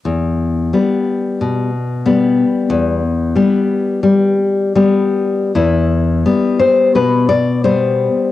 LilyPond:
\new Staff \with { instrumentName = "Nylon-string guitar" } { \clef bass \time 4/4 \key e \minor \tempo 4 = 87 << { r1 | r1 | e'4. c''8 b'8 d''8 c''4 | } \\ { e,4 <g b>4 b,4 <g b>4 | e,4 <g b>4 g4 <g b>4 | e,4 <g b>4 b,4 <g b>4 | } >> }